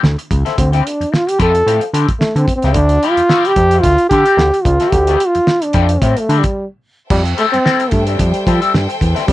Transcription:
0.03 D2, muted clean electric guitar stroke, snare
0.18 muted clean electric guitar stroke, closed hi-hat
0.31 C#2, kick, closed hi-hat
0.45 F3 C4 E4 A4, snare, closed hi-hat
0.58 D2 C4, muted clean electric guitar stroke, kick, closed hi-hat
0.73 F3 C4 E4 G4, closed hi-hat
0.85 D4, muted clean electric guitar stroke, closed hi-hat
1.00 F2, muted clean electric guitar stroke, closed hi-hat
1.12 F4, muted clean electric guitar stroke, snare
1.27 G4, muted clean electric guitar stroke, closed hi-hat
1.39 F2 F3 C4 E4 G4 A4, kick, closed hi-hat
1.55 muted clean electric guitar stroke, closed hi-hat
1.66 A2 F3 C4 E4 G4, closed hi-hat
1.81 muted clean electric guitar stroke, closed hi-hat
1.93 D3 F3 C4 E4 G4, closed hi-hat
2.09 muted clean electric guitar stroke, kick, closed hi-hat
2.20 A3, muted clean electric guitar stroke, snare
2.36 D3 C4, muted clean electric guitar stroke, closed hi-hat
2.48 kick, closed hi-hat
2.56 C4
2.62 C#2 F3 C4 E4 G4, snare, closed hi-hat
2.73 D2 D4, kick, closed hi-hat
2.89 closed hi-hat
3.03 F3 C4 E4 G4, closed hi-hat
3.10 F4
3.17 F2, closed hi-hat
3.29 F3 C4 E4 G4, snare
3.45 G4, closed hi-hat
3.56 F2, muted clean electric guitar stroke, kick, closed hi-hat
3.71 C4 E4 G4, closed hi-hat
3.75 F3
3.81 D2 F4, muted clean electric guitar stroke, kick, closed hi-hat
3.98 muted clean electric guitar stroke, closed hi-hat
4.09 D3 F3 C4 E4 G4, kick, closed hi-hat
4.13 G4
4.26 F3 C4 E4 G4, closed hi-hat
4.37 D2, muted clean electric guitar stroke, snare
4.54 muted clean electric guitar stroke, closed hi-hat
4.64 C#2 F4, kick, closed hi-hat
4.80 F3 C4 E4 A4, snare, closed hi-hat
4.91 D2 G4, kick, closed hi-hat
5.07 F3 C4 E4 G4, closed hi-hat
5.20 muted clean electric guitar stroke, closed hi-hat
5.27 F4
5.35 F2, muted clean electric guitar stroke, closed hi-hat
5.47 muted clean electric guitar stroke, snare
5.62 D4, muted clean electric guitar stroke, closed hi-hat
5.73 F2 F3 C4 E4 G4, kick, closed hi-hat
5.89 muted clean electric guitar stroke, closed hi-hat
6.01 A2 F3 C4 E4 G4, kick, closed hi-hat
6.17 A3, muted clean electric guitar stroke, closed hi-hat
6.29 D3 F3 C4 E4 G4, closed hi-hat
6.39 G3
6.44 muted clean electric guitar stroke, kick, closed hi-hat
7.10 F2 G3 A4 C5 E5 G5, kick, crash
7.25 closed hi-hat
7.37 G3 A3 C4 E4 A4, closed hi-hat
7.52 G2 C4, closed hi-hat
7.65 G3 C4 E4 A4, snare
7.80 closed hi-hat
7.91 G2 A3, muted clean electric guitar stroke, kick, closed hi-hat
8.07 G3 C4 E4 A4, closed hi-hat
8.19 F2, muted clean electric guitar stroke, kick, closed hi-hat
8.34 muted clean electric guitar stroke, closed hi-hat
8.46 F3 G3 C4 E4 A4, kick, closed hi-hat
8.62 G3 C4 E4 A4, closed hi-hat
8.74 G2, snare
8.89 muted clean electric guitar stroke, closed hi-hat
9.01 E2, kick, closed hi-hat
9.15 G3 C4 E4 B4, snare, closed hi-hat
9.27 F2 G3, muted clean electric guitar stroke, kick, closed hi-hat

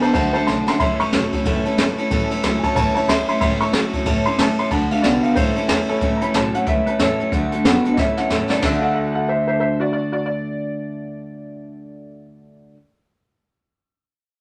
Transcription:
0.01 D3 B3 D4 F#4 A4 C5 A5, muted upright bass stroke, ride
0.13 D2 D3 A3 D4 F#4 A4 C5 A5, kick, ride
0.33 D3 A3 D4 F#4 A4 C5 A5, muted upright bass stroke, ride
0.47 B1 D3 A3 D4 F#4 A4 A5 C6, snare
0.67 D3 A3 D4 F#4 A4 A5 C6, muted upright bass stroke, snare
0.79 A1 A2 E3 A3 C#4 E4 A4 E5 C6, kick, ride
0.99 A2 E3 A3 C#4 E4 A4 C#6, ride
1.13 E1 A2 F#3 A3 C#4 E4 A4, snare, ride
1.33 A2 F#3 A3 C#4 E4 A4, kick, ride
1.45 F#1 A2 E3 A3 C#4 E4 A4, kick, ride
1.65 A2 E3 A3 C#4 E4 A4, muted upright bass stroke, ride
1.78 G1 A2 E3 A3 C#4 E4 A4, snare, ride
1.98 A2 E3 A3 C#4 E4 A4, muted upright bass stroke, ride
2.11 A1 A2 E3 A3 C#4 E4 A4, kick, ride
2.31 A2 E3 A3 C#4 E4 A4, ride
2.43 C#2 A2 F#3 A3 C#4 E4 A4, snare, ride
2.59 G#5
2.63 A2 F#3 A3 C#4 E4 A4 C#5 A5, kick, ride
2.75 E2 A2 E3 A3 C#4 E4 A4 C#5 A5, kick, ride
2.94 A2 E3 A3 C#4 E4 A4 C#5 A5, ride
3.08 D2 A2 E3 A3 C#4 E4 A4 E5 C6, snare, ride
3.28 A2 E3 A3 C#4 E4 A4 E5 C6, muted upright bass stroke, ride
3.40 C#2 A2 E3 A3 C#4 E4 A4 E5 C6, kick, ride
3.61 A2 E3 A3 C#4 E4 A4 C#6, ride
3.73 F#2 A2 F#3 A3 C#4 E4 A4, snare, ride
3.93 A2 F#3 A3 C#4 E4 A4, kick, ride
4.05 E2 A2 E3 A3 C#4 E4 A4, kick, ride
4.26 A2 E3 A3 C#4 E4 A4 C6, ride
4.38 A2 E3 A3 C#4 E4 A4 A5, snare, ride
4.58 A2 E3 A3 C#4 E4 A4 C6, muted upright bass stroke, ride
4.71 D2 D3 A3 D4 F#4 A4 A5, kick, ride
4.91 D3 A3 D4 F#4 A4 F5, ride
5.02 C2 D3 A3 B3 D4 F#4 A4 D5, snare, ride
5.23 D3 B3 D4 F#4 A4 F5, muted upright bass stroke, ride
5.35 C#2 A2 E3 A3 C#4 E4 A4 C5, kick, ride
5.56 A2 E3 A3 C#4 E4 A4, ride
5.68 E2 A2 E3 A3 C#4 E4 G#4 A4, snare, ride
5.88 A2 E3 A3 C#4 E4 A4, muted upright bass stroke, ride
6.01 A2 E3 A3 C#4 E4 A4, kick, closed hi-hat
6.17 A#5
6.21 A2 E3 A3 C#4 E4 A4 B5, closed hi-hat
6.34 B1 A2 E3 F#3 A3 C#4 E4 A4 A5, snare, closed hi-hat
6.54 A2 F#3 A3 C#4 E4 A4 F#5, closed hi-hat
6.66 C#2 A2 E3 A3 C#4 E4 A4 E5, kick, closed hi-hat
6.86 A2 E3 A3 C#4 E4 A4 B4, closed hi-hat
6.99 E2 A2 E3 A3 C#4 E4 A4, snare, closed hi-hat
7.19 A2 E3 A3 C#4 E4 A4
7.32 D2 D3 A3 D4 F#4 A4, kick, closed hi-hat
7.51 D3 A3 D4 F#4 A4, closed hi-hat
7.64 F#2 D3 A3 B3 D4 F#4 A4, snare, closed hi-hat
7.85 D3 B3 D4 F#4 A4, muted upright bass stroke, closed hi-hat
7.94 A2 E3 A3 D#5, kick, snare
7.98 C#4 E4 A4 E5
8.17 A2 E3 A3 C#4 E4 A4 F#5, muted upright bass stroke, snare
8.30 E2 A2 E3 A3 C#4 E4 A4, snare
8.50 A2 E3 A3 C#4 E4 A4 D5, muted upright bass stroke, snare
8.58 D3
8.62 A3 D4 F#4 A4, kick, snare, crash
8.68 D4 F#4
8.75 A4 F5
8.82 A4 F#5
8.94 A4 F#5
9.15 A4 F#5
9.29 C5 E5
9.47 C5 E5
9.60 C5 E5
9.80 F#4 D5
9.92 F#4 D5
10.12 F#4 D5
10.26 D5

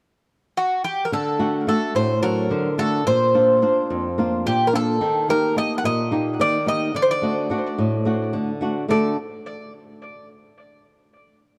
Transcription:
0.57 F#4
0.84 G4
1.05 A#4
1.12 D3 A4
1.39 A3 D4 F#4
1.67 A3 D4 F#4 A4
1.95 A2 C5
2.22 F#3 D4 F#4 A#4
2.51 D3
2.78 A3 D4 F#4 A4
3.07 A#2 C5
3.34 A#3 D4 F4
3.62 A#3 D4 F4
3.90 F2
4.18 A#3 D4 F4
4.46 A#2 G4
4.67 A#4
4.73 A#3 D4 F4 A4
5.01 D#3
5.28 A#3 D#4 G4 A#4
5.56 A#3 D#4 G4 D#5
5.78 F#5
5.84 A#2 D#5
6.11 A#3 D#4 G4
6.40 D#3 D5
6.66 A#3 D#4 G4 D#5
6.94 D3 D5
7.02 C5
7.11 D5
7.22 A3 D4 F#4
7.50 A3 D4 F#4
7.78 A2
8.05 A3 D4 F#4
8.33 D3
8.61 A3 D4 F#4
8.88 D3 A3 D4 F#4 A4 D5

